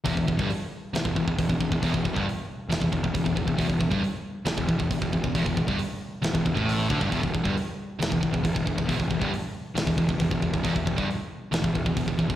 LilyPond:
<<
  \new Staff \with { instrumentName = "Distorted electric guitar" } { \clef bass \time 4/4 \key e \minor \tempo 4 = 136 e,16 e,16 e,16 g,16 r4 e,16 e,16 e,16 e,16 e,16 e,16 e,16 e,16 | e,16 e,16 e,16 g,16 r4 e,16 e,16 e,16 e,16 e,16 e,16 e,16 e,16 | e,16 e,16 e,16 g,16 r4 e,16 e,16 e,16 e,16 e,16 e,16 e,16 e,16 | e,16 e,16 e,16 g,16 r4 e,16 e,16 e,16 a,8. d16 g,16 |
e,16 e,16 e,16 g,16 r4 e,16 e,16 e,16 e,16 e,16 e,16 e,16 e,16 | e,16 e,16 e,16 g,16 r4 e,16 e,16 e,16 e,16 e,16 e,16 e,16 e,16 | e,16 e,16 e,16 g,16 r4 e,16 e,16 e,16 e,16 e,16 e,16 e,16 e,16 | }
  \new Staff \with { instrumentName = "Distorted electric guitar" } { \clef bass \time 4/4 \key e \minor e,16 e,16 e,16 g,16 r4 e,16 e,16 e,16 e,16 e,16 e,16 e,16 e,16 | e,16 e,16 e,16 g,16 r4 e,16 e,16 e,16 e,16 e,16 e,16 e,16 e,16 | e,16 e,16 e,16 g,16 r4 e,16 e,16 e,16 e,16 e,16 e,16 e,16 e,16 | e,16 e,16 e,16 g,16 r4 e,16 e,16 e,16 a,8. d16 g,16 |
e,16 e,16 e,16 g,16 r4 e,16 e,16 e,16 e,16 e,16 e,16 e,16 e,16 | e,16 e,16 e,16 g,16 r4 e,16 e,16 e,16 e,16 e,16 e,16 e,16 e,16 | e,16 e,16 e,16 g,16 r4 e,16 e,16 e,16 e,16 e,16 e,16 e,16 e,16 | }
  \new Staff \with { instrumentName = "Picked electric bass" } { \clef bass \time 4/4 \key e \minor e,,16 e,,16 e,,16 g,,16 r4 e,,16 e,,16 e,,16 e,,16 e,,16 e,,16 e,,16 e,,16 | e,,16 e,,16 e,,16 g,,16 r4 e,,16 e,,16 e,,16 e,,16 e,,16 e,,16 e,,16 e,,16 | e,,16 e,,16 e,,16 g,,16 r4 e,,16 e,,16 e,,16 e,,16 e,,16 e,,16 e,,16 e,,16 | e,,16 e,,16 e,,16 g,,16 r4 e,,16 e,,16 e,,16 a,,8. d,16 g,,16 |
e,,16 e,,16 e,,16 g,,16 r4 e,,16 e,,16 e,,16 e,,16 e,,16 e,,16 e,,16 e,,16 | e,,16 e,,16 e,,16 g,,16 r4 e,,16 e,,16 e,,16 e,,16 e,,16 e,,16 e,,16 e,,16 | e,,16 e,,16 e,,16 g,,16 r4 e,,16 e,,16 e,,16 e,,16 e,,16 e,,16 e,,16 e,,16 | }
  \new DrumStaff \with { instrumentName = "Drums" } \drummode { \time 4/4 <hho bd>16 bd16 bd16 bd16 hho4 <hho sn>16 bd16 bd16 bd16 <hho bd>16 bd16 bd16 bd16 | <hho bd>16 bd16 bd16 bd16 hho4 <hho sn>16 bd16 bd16 bd16 <hho bd>16 bd16 bd16 bd16 | <hho bd>16 bd16 bd16 bd16 hho4 <hho sn>16 bd16 bd16 bd16 <hho bd>16 bd16 bd16 bd16 | <hho bd>16 bd16 bd16 bd16 hho4 <hho sn>16 bd16 bd16 bd16 hho8 bd16 bd16 |
<hho bd>16 bd16 bd16 bd16 hho4 <hho sn>16 bd16 bd16 bd16 <hho bd>16 bd16 bd16 bd16 | <hho bd>16 bd16 bd16 bd16 hho4 <hho sn>16 bd16 bd16 bd16 <hho bd>16 bd16 bd16 bd16 | <hho bd>16 bd16 bd16 bd16 hho4 <hho sn>16 bd16 bd16 bd16 <hho bd>16 bd16 bd16 bd16 | }
>>